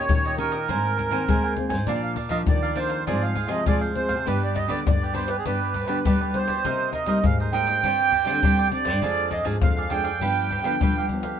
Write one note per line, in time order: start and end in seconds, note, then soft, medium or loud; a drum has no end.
0.00 0.34 A#3 medium
0.00 0.34 C#4 medium
0.00 0.34 G4 medium
0.00 0.35 C#5 medium
0.09 0.66 A#2 medium
0.09 0.70 D#3 medium
0.09 pandeiro medium
0.09 shaker medium
0.09 surdo loud
0.25 0.38 G4 soft
0.25 0.39 C#5 soft
0.25 0.38 D#5 soft
0.25 pandeiro soft
0.25 shaker soft
0.37 0.56 A#3 medium
0.37 0.57 C#4 soft
0.37 0.53 D#4 medium
0.37 0.57 G4 soft
0.37 0.52 G4 medium
0.37 1.54 A#4 medium
0.37 0.51 C#5 medium
0.37 0.50 D#5 medium
0.37 pandeiro medium
0.52 0.68 G4 soft
0.52 0.67 C#5 soft
0.52 0.67 D#5 soft
0.52 pandeiro medium
0.52 shaker medium
0.68 1.26 G#2 soft
0.68 1.14 G#2 medium
0.68 1.09 D#3 medium
0.68 1.09 A#3 soft
0.68 1.10 C4 medium
0.68 0.95 A#4 medium
0.68 0.96 C5 medium
0.68 0.97 G#5 medium
0.68 pandeiro medium
0.68 shaker medium
0.68 surdo medium
0.85 pandeiro soft
0.85 shaker soft
0.96 1.10 A#4 soft
0.96 1.10 C5 soft
0.96 1.11 G#5 soft
0.96 pandeiro medium
0.96 surdo soft
1.11 1.27 D#3 medium
1.11 1.25 D#3 medium
1.11 1.53 A#3 medium
1.11 1.53 C4 medium
1.11 1.22 A#4 medium
1.11 1.22 C5 medium
1.11 1.22 G#5 medium
1.11 pandeiro medium
1.11 shaker medium
1.28 1.56 D#3 soft
1.28 1.73 G#3 medium
1.28 1.43 A#4 medium
1.28 1.43 C5 medium
1.28 1.43 G#5 medium
1.28 pandeiro medium
1.28 shaker medium
1.28 surdo medium
1.44 1.70 C5 soft
1.44 1.68 G#5 soft
1.44 pandeiro soft
1.44 shaker soft
1.56 1.75 D#3 medium
1.56 1.76 A#3 medium
1.56 1.76 C4 medium
1.56 pandeiro medium
1.56 shaker medium
1.56 surdo soft
1.69 1.85 G#2 medium
1.69 1.86 C5 soft
1.69 1.85 G#5 soft
1.69 pandeiro medium
1.69 shaker medium
1.69 surdo soft
1.87 2.45 A#2 medium
1.87 2.26 A#2 medium
1.87 2.16 F3 medium
1.87 2.16 A#3 soft
1.87 2.14 D4 medium
1.87 2.16 D4 medium
1.87 2.15 A#4 medium
1.87 2.02 D5 medium
1.87 2.16 D5 medium
1.87 2.16 F5 medium
1.87 pandeiro medium
1.87 shaker medium
1.87 surdo medium
2.04 2.17 F5 medium
2.04 pandeiro soft
2.04 shaker soft
2.15 2.29 D4 medium
2.15 2.29 A#4 soft
2.15 2.29 D5 medium
2.15 2.30 F5 medium
2.15 pandeiro medium
2.15 shaker medium
2.15 surdo soft
2.29 2.72 F3 medium
2.29 2.44 F3 medium
2.29 2.72 A#3 medium
2.29 2.41 D4 medium
2.29 2.72 D4 medium
2.29 2.41 A#4 medium
2.29 2.41 D5 medium
2.29 2.37 D#5 medium
2.29 2.41 F5 medium
2.29 pandeiro medium
2.29 shaker medium
2.29 surdo soft
2.47 3.05 F2 medium
2.47 3.07 D#3 medium
2.47 2.79 D5 medium
2.47 pandeiro medium
2.47 shaker medium
2.47 surdo loud
2.63 2.75 A#4 soft
2.63 2.76 D5 soft
2.63 2.76 F5 soft
2.63 pandeiro soft
2.63 shaker soft
2.75 3.02 F3 soft
2.75 3.02 A#3 medium
2.75 2.90 D4 medium
2.75 3.03 D4 medium
2.75 2.89 A#4 medium
2.75 3.05 C5 medium
2.75 2.88 D5 medium
2.75 2.87 F5 medium
2.75 pandeiro soft
2.89 3.05 A#4 soft
2.89 3.05 D5 soft
2.89 3.04 F5 soft
2.89 pandeiro medium
2.89 shaker medium
3.07 3.64 G#2 medium
3.07 3.50 G#2 medium
3.07 3.35 F3 soft
3.07 3.35 G#3 soft
3.07 3.36 C4 medium
3.07 3.34 F4 medium
3.07 3.35 G#4 medium
3.07 3.35 C5 medium
3.07 3.23 D5 medium
3.07 3.36 F5 medium
3.07 pandeiro medium
3.07 shaker medium
3.07 surdo medium
3.23 3.51 F5 medium
3.23 pandeiro soft
3.23 shaker soft
3.35 3.47 F4 soft
3.35 3.47 G#4 soft
3.35 3.48 C5 soft
3.35 3.48 F5 medium
3.35 pandeiro medium
3.35 shaker medium
3.35 surdo soft
3.48 3.64 C3 medium
3.48 3.91 F3 medium
3.48 3.91 G#3 medium
3.48 3.91 C4 medium
3.48 3.59 F4 medium
3.48 3.59 G#4 medium
3.48 3.60 C5 medium
3.48 3.65 D#5 medium
3.48 3.60 F5 medium
3.48 pandeiro medium
3.48 shaker medium
3.66 4.23 G#2 medium
3.66 4.12 G#3 medium
3.66 3.80 F4 medium
3.66 3.81 G#4 medium
3.66 3.80 C5 medium
3.66 3.81 D5 medium
3.66 3.80 F5 medium
3.66 pandeiro medium
3.66 shaker medium
3.66 surdo medium
3.81 4.09 G#4 soft
3.81 4.08 C5 soft
3.81 4.07 F5 soft
3.81 pandeiro soft
3.81 shaker soft
3.95 4.13 F3 medium
3.95 4.14 G#3 soft
3.95 4.14 C4 medium
3.95 4.27 C5 medium
3.95 pandeiro soft
3.95 shaker medium
3.95 surdo soft
4.08 4.23 C3 medium
4.08 4.25 G#4 soft
4.08 4.24 C5 soft
4.08 4.24 F5 soft
4.08 pandeiro medium
4.08 shaker medium
4.08 surdo soft
4.25 4.83 G2 medium
4.25 4.65 G2 medium
4.25 4.66 G3 medium
4.25 4.66 B3 medium
4.25 4.53 D4 medium
4.25 4.66 D4 medium
4.25 4.54 G4 medium
4.25 4.54 B4 medium
4.25 4.42 B4 medium
4.25 4.55 D5 medium
4.25 pandeiro medium
4.25 shaker medium
4.25 surdo medium
4.43 4.58 D5 medium
4.43 pandeiro soft
4.43 shaker soft
4.54 4.67 D4 soft
4.54 4.67 G4 soft
4.54 4.68 B4 soft
4.54 4.68 D5 medium
4.54 4.72 D#5 medium
4.54 pandeiro medium
4.54 shaker medium
4.54 surdo soft
4.68 4.82 D3 medium
4.68 5.10 G3 medium
4.68 5.10 B3 medium
4.68 4.79 D4 medium
4.68 5.10 D4 medium
4.68 4.79 G4 medium
4.68 4.79 B4 medium
4.68 4.85 D5 medium
4.68 4.79 D5 medium
4.68 pandeiro medium
4.68 shaker medium
4.68 surdo soft
4.86 5.37 G2 medium
4.86 5.42 D3 medium
4.86 5.14 D5 medium
4.86 pandeiro medium
4.86 shaker medium
4.86 surdo loud
5.02 5.13 G4 soft
5.02 5.14 B4 soft
5.02 5.14 D5 soft
5.02 pandeiro soft
5.02 shaker soft
5.14 5.33 G3 medium
5.14 5.33 B3 medium
5.14 5.29 D4 medium
5.14 5.33 D4 medium
5.14 5.29 G4 medium
5.14 5.28 B4 medium
5.14 5.29 C5 medium
5.14 5.27 D5 medium
5.14 pandeiro soft
5.28 5.44 G4 soft
5.28 5.37 B4 medium
5.28 5.44 B4 soft
5.28 5.43 D5 soft
5.28 pandeiro medium
5.28 shaker medium
5.38 5.45 G#4 medium
5.46 6.02 G2 soft
5.46 5.88 G2 medium
5.46 5.74 G3 soft
5.46 5.74 B3 soft
5.46 5.73 D4 medium
5.46 5.74 D4 soft
5.46 5.74 G4 medium
5.46 6.38 B4 medium
5.46 5.74 B4 medium
5.46 5.75 D5 medium
5.46 pandeiro medium
5.46 shaker medium
5.46 surdo medium
5.61 pandeiro soft
5.61 shaker soft
5.74 5.87 D4 soft
5.74 5.87 G4 soft
5.74 5.87 B4 soft
5.74 5.87 D5 soft
5.74 pandeiro soft
5.74 surdo soft
5.88 6.02 D3 medium
5.88 6.29 G3 medium
5.88 6.29 B3 medium
5.88 5.98 D4 medium
5.88 6.30 D4 medium
5.88 5.98 G4 medium
5.88 5.98 B4 medium
5.88 5.98 D5 medium
5.88 pandeiro medium
5.88 shaker medium
6.05 6.62 D3 soft
6.05 6.48 G3 medium
6.05 6.19 D4 medium
6.05 6.19 G4 medium
6.05 6.20 B4 medium
6.05 6.19 D5 medium
6.05 pandeiro medium
6.05 shaker medium
6.05 surdo medium
6.21 6.48 G4 soft
6.21 6.47 B4 soft
6.21 6.46 D5 soft
6.21 pandeiro soft
6.21 shaker soft
6.34 6.52 G3 medium
6.34 6.52 B3 medium
6.34 6.52 D4 medium
6.34 6.90 C5 medium
6.34 pandeiro medium
6.47 6.61 B2 medium
6.47 6.63 G4 soft
6.47 6.63 B4 soft
6.47 6.62 D5 soft
6.47 pandeiro medium
6.47 shaker medium
6.47 surdo soft
6.64 7.03 C3 medium
6.64 7.21 C3 medium
6.64 6.93 G3 medium
6.64 6.93 A#3 medium
6.64 6.92 D#4 medium
6.64 6.93 D#4 medium
6.64 6.93 A#4 medium
6.64 6.93 C5 medium
6.64 6.94 D#5 medium
6.64 pandeiro medium
6.64 shaker medium
6.64 surdo medium
6.80 pandeiro soft
6.80 shaker soft
6.93 7.06 D#4 soft
6.93 7.07 A#4 soft
6.93 7.07 C5 soft
6.93 7.25 D#5 medium
6.93 7.07 D#5 medium
6.93 pandeiro medium
6.93 shaker medium
6.93 surdo soft
7.06 7.21 G3 medium
7.06 7.48 G3 medium
7.06 7.48 A#3 medium
7.06 7.17 D#4 medium
7.06 7.48 D#4 medium
7.06 7.18 A#4 medium
7.06 7.18 C5 medium
7.06 7.18 D#5 medium
7.06 pandeiro medium
7.06 shaker medium
7.06 surdo soft
7.24 7.83 G#2 medium
7.24 7.38 F5 medium
7.24 pandeiro medium
7.24 shaker medium
7.24 surdo medium
7.40 7.52 A#4 soft
7.40 7.53 C5 soft
7.40 7.53 D#5 soft
7.40 pandeiro soft
7.40 shaker soft
7.53 7.78 G3 medium
7.53 7.78 A#3 medium
7.53 7.67 D#4 medium
7.53 7.79 D#4 medium
7.53 7.67 A#4 medium
7.53 7.67 C5 medium
7.53 7.66 D#5 medium
7.53 8.68 G5 loud
7.53 pandeiro soft
7.53 shaker medium
7.67 7.82 A#4 soft
7.67 7.82 C5 soft
7.67 7.81 D#5 soft
7.67 pandeiro medium
7.67 shaker medium
7.83 8.28 G2 medium
7.83 8.40 G2 soft
7.83 8.11 G3 soft
7.83 8.12 C4 soft
7.83 8.11 D4 medium
7.83 8.12 D4 medium
7.83 8.12 G4 medium
7.83 8.12 C5 medium
7.83 8.13 D5 medium
7.83 pandeiro medium
7.83 shaker medium
7.83 surdo soft
7.99 pandeiro soft
7.99 shaker soft
8.12 8.25 D4 soft
8.12 8.26 G4 soft
8.12 8.26 C5 soft
8.12 8.26 D5 medium
8.12 pandeiro soft
8.12 surdo soft
8.25 8.40 D3 medium
8.25 8.67 G3 medium
8.25 8.67 C4 medium
8.25 8.36 D4 medium
8.25 8.67 D4 medium
8.25 8.37 G4 medium
8.25 8.37 C5 medium
8.25 8.37 D5 medium
8.25 pandeiro medium
8.25 shaker medium
8.43 9.00 D3 soft
8.43 8.88 G3 medium
8.43 8.57 D4 medium
8.43 8.57 G4 medium
8.43 8.57 C5 medium
8.43 8.57 D5 medium
8.43 pandeiro medium
8.43 shaker medium
8.43 surdo medium
8.59 8.86 G4 soft
8.59 8.85 C5 soft
8.59 8.84 D5 soft
8.59 pandeiro soft
8.59 shaker soft
8.72 8.90 G3 soft
8.72 8.90 C4 soft
8.72 8.90 D4 medium
8.72 9.34 D5 loud
8.72 pandeiro medium
8.72 surdo soft
8.85 8.99 G2 medium
8.85 9.01 G4 soft
8.85 9.01 C5 soft
8.85 9.00 D5 soft
8.85 pandeiro medium
8.85 shaker medium
8.85 surdo soft
9.02 9.59 F2 medium
9.02 9.41 F2 medium
9.02 9.31 F3 medium
9.02 9.31 G#3 medium
9.02 9.29 D4 medium
9.02 9.31 D4 medium
9.02 9.30 G#4 medium
9.02 9.30 D5 medium
9.02 9.31 F5 medium
9.02 pandeiro medium
9.02 shaker medium
9.02 surdo medium
9.18 pandeiro soft
9.18 shaker soft
9.31 9.43 D4 soft
9.31 9.44 G#4 soft
9.31 9.44 D5 soft
9.31 9.45 D#5 medium
9.31 9.44 F5 medium
9.31 pandeiro medium
9.31 surdo soft
9.44 9.58 G#2 medium
9.44 9.86 F3 medium
9.44 9.86 G#3 medium
9.44 9.55 D4 medium
9.44 9.86 D4 medium
9.44 9.55 G#4 medium
9.44 9.55 D5 medium
9.44 9.55 F5 medium
9.44 pandeiro medium
9.44 shaker medium
9.44 surdo soft
9.61 10.18 F2 medium
9.61 10.20 F2 medium
9.61 9.93 F5 medium
9.61 pandeiro medium
9.61 shaker medium
9.61 surdo loud
9.77 9.89 G#4 soft
9.77 9.89 D5 soft
9.77 9.90 F5 soft
9.77 pandeiro soft
9.77 shaker soft
9.89 10.09 F3 soft
9.89 10.09 G#3 soft
9.89 10.04 D4 medium
9.89 10.09 D4 medium
9.89 10.05 G#4 medium
9.89 10.03 D5 medium
9.89 10.02 F5 medium
9.89 11.06 G5 medium
9.89 pandeiro medium
10.04 10.20 G#4 soft
10.04 10.19 D5 soft
10.04 10.19 F5 soft
10.04 pandeiro medium
10.04 shaker medium
10.20 10.63 G2 medium
10.20 10.78 G2 soft
10.20 10.49 F3 soft
10.20 10.49 B3 medium
10.20 10.49 D4 medium
10.20 10.50 D4 medium
10.20 10.50 G4 medium
10.20 10.50 B4 medium
10.20 10.50 F5 medium
10.20 pandeiro medium
10.20 shaker medium
10.20 surdo medium
10.38 pandeiro soft
10.38 shaker soft
10.51 10.63 D4 medium
10.51 10.63 G4 soft
10.51 10.64 B4 soft
10.51 10.64 F5 soft
10.51 pandeiro soft
10.51 surdo soft
10.63 10.77 D3 medium
10.63 11.05 F3 medium
10.63 11.05 B3 medium
10.63 10.74 D4 medium
10.63 11.05 D4 medium
10.63 10.74 G4 medium
10.63 10.75 B4 medium
10.63 10.75 F5 medium
10.63 pandeiro medium
10.63 shaker medium
10.80 11.38 D3 medium
10.80 11.22 G3 medium
10.80 10.95 D4 medium
10.80 10.95 G4 medium
10.80 10.95 B4 medium
10.80 10.95 F5 medium
10.80 pandeiro medium
10.80 shaker medium
10.80 surdo medium
10.96 11.24 G4 soft
10.96 11.23 B4 soft
10.96 11.22 F5 soft
10.96 pandeiro soft
10.96 shaker soft
11.09 11.36 F3 medium
11.09 11.36 B3 medium
11.09 11.36 D4 medium
11.09 pandeiro medium
11.09 shaker medium
11.09 surdo soft
11.22 11.36 D3 medium
11.22 11.39 G4 soft
11.22 11.39 B4 soft
11.22 11.38 F5 soft
11.22 pandeiro medium
11.22 shaker medium
11.22 surdo soft